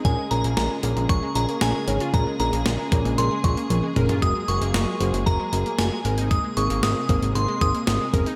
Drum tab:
HH |x-xxx-xxx-xxx-xx|x-xxx-xxx-xxx-xx|x-xxx-xxx-xxx-xx|x-xxx-xxx-xxx-xx|
SD |----o-------o---|----o-----------|----o-------o---|----o-------o---|
T1 |----------------|------------o---|----------------|----------------|
T2 |----------------|--------------o-|----------------|----------------|
FT |----------------|---------------o|----------------|----------------|
BD |o-------o-------|o-----o---o-----|o-------o-------|o-----o---o---o-|